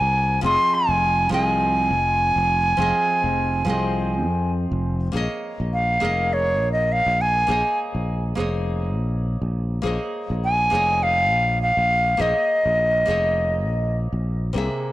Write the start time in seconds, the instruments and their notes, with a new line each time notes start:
Already playing: nylon-string guitar C3 A#3 G#4 E5, flute G#5
0.01 fretless electric bass C2
0.41 fretless electric bass F1, nylon-string guitar F3 C4 G#4, flute C6
0.46 nylon-string guitar D#5
0.74 flute G#5
0.89 fretless electric bass F1
1.29 fretless electric bass C2, nylon-string guitar F3 C4 G#4, flute G#5
1.34 nylon-string guitar D#5
1.91 fretless electric bass F1
2.36 fretless electric bass F1
2.77 fretless electric bass F1, nylon-string guitar F3 C4 G#4
2.82 nylon-string guitar D#5
3.24 fretless electric bass F1
3.65 fretless electric bass C2, nylon-string guitar F3 C4 G#4
3.70 nylon-string guitar D#5
4.26 fretless electric bass F2
4.71 fretless electric bass F1
5.12 fretless electric bass A#1, nylon-string guitar A#3 G#4 C#5
5.17 nylon-string guitar D#5
5.60 fretless electric bass A#1
5.73 flute F5
6.00 fretless electric bass F1, nylon-string guitar A#3 G#4 A#4 C#5
6.05 nylon-string guitar D#5
6.33 flute C#5
6.61 fretless electric bass A#1
6.72 flute D#5
6.92 flute F5
7.06 fretless electric bass A#1
7.21 flute G#5
7.47 fretless electric bass A#1, nylon-string guitar A#3 G#4 C5 C#5
7.51 nylon-string guitar D#5
7.95 fretless electric bass A#1
8.35 fretless electric bass F1, nylon-string guitar A#3 G#4 C5 C#5
8.40 nylon-string guitar D#5
8.97 fretless electric bass A#1
9.42 fretless electric bass A#1
9.82 fretless electric bass A#1, nylon-string guitar A#3 G#4 C5 C#5
9.87 nylon-string guitar D#5
10.30 fretless electric bass A#1
10.44 flute G#5
10.70 fretless electric bass F1, nylon-string guitar A#3 G#4 C5 C#5
10.75 nylon-string guitar D#5
11.03 flute F5
11.31 fretless electric bass A#1
11.62 flute F5
11.77 fretless electric bass A#1
12.17 fretless electric bass A#1, nylon-string guitar A#3 G#4 C5 C#5, flute D#5
12.22 nylon-string guitar D#5
12.66 fretless electric bass A#1
13.06 fretless electric bass F1, nylon-string guitar A#3 G#4 C5 C#5
13.11 nylon-string guitar D#5
13.67 fretless electric bass A#1
14.13 fretless electric bass A#1
14.53 fretless electric bass C2, nylon-string guitar C3 A#3 G#4
14.58 nylon-string guitar E5